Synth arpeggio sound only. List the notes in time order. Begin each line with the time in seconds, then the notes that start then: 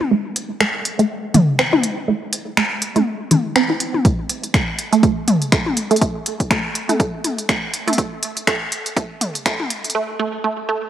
0.11 A3
0.60 A3
0.99 A3
1.34 E3
1.59 C4
1.73 E4
2.08 A3
2.57 A3
2.96 A3
3.31 E3
3.56 C4
3.70 E4
4.05 A3
4.54 A3
4.93 A3
5.03 A3
5.52 A3
5.91 A3
6.01 A3
6.51 A3
6.89 A3
7.00 A3
7.49 A3
7.88 A3
7.98 A3
8.47 A3
8.97 A3
9.46 A3
9.95 A3
10.19 A3
10.44 A3
10.69 A3